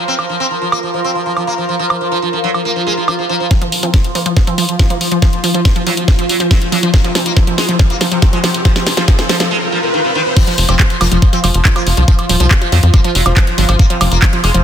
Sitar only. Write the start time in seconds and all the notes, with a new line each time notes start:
0.08 C4
0.19 F3
0.29 F3
0.40 C4
0.51 F3
0.62 F3
0.72 A#3
0.83 F3
0.94 F3
1.04 C4
1.15 F3
1.26 F3
1.37 F3
1.47 A#3
1.58 F3
1.69 F3
1.79 F3
1.90 F3
2.01 F3
2.12 F3
2.22 F3
2.33 F3
2.44 F#3
2.54 F3
2.65 A#3
2.76 F3
2.87 G#3
2.97 F3
3.08 F3
3.19 F3
3.29 F3
3.40 F3
3.51 C4
3.62 F3
3.72 F3
3.83 C4
3.94 F3
4.04 F3
4.15 A#3
4.26 F3
4.37 F3
4.47 C4
4.58 F3
4.69 F3
4.79 F3
4.90 A#3
5.01 F3
5.12 F3
5.22 F3
5.33 F3
5.44 F3
5.54 F3
5.65 F3
5.76 F3
5.87 F#3
5.97 F3
6.08 A#3
6.19 F3
6.29 F#3
6.40 F3
6.51 F#3
6.62 F3
6.72 F#3
6.83 F3
6.94 A#3
7.04 C3
7.15 C3
7.26 A#3
7.37 C3
7.47 C3
7.58 G#3
7.69 C3
7.90 A#3
8.01 C3
8.12 C3
8.22 C3
8.33 G#3
8.44 C3
8.54 C3
8.65 F3
8.76 C3
8.87 C3
8.97 F3
9.08 C3
9.19 C3
9.29 F3
9.40 C3
9.51 G#3
9.62 C3
9.72 F3
9.83 C3
9.94 D#3
10.04 C3
10.15 D#3
10.26 C3
10.37 C4
10.47 F3
10.58 F3
10.69 C4
10.79 F3
10.90 F3
11.01 A#3
11.12 F3
11.22 F3
11.33 C4
11.44 F3
11.54 F3
11.65 F3
11.76 A#3
11.87 F3
11.97 F3
12.08 F3
12.19 F3
12.29 F3
12.40 F3
12.51 F3
12.62 F3
12.72 F#3
12.83 F3
12.94 A#3
13.04 F3
13.15 F#3
13.26 F3
13.37 F#3
13.47 F3
13.58 F#3
13.69 F3
13.79 A#3
13.90 C3
14.01 C3
14.12 A#3
14.22 C3
14.33 C3
14.44 G#3
14.54 C3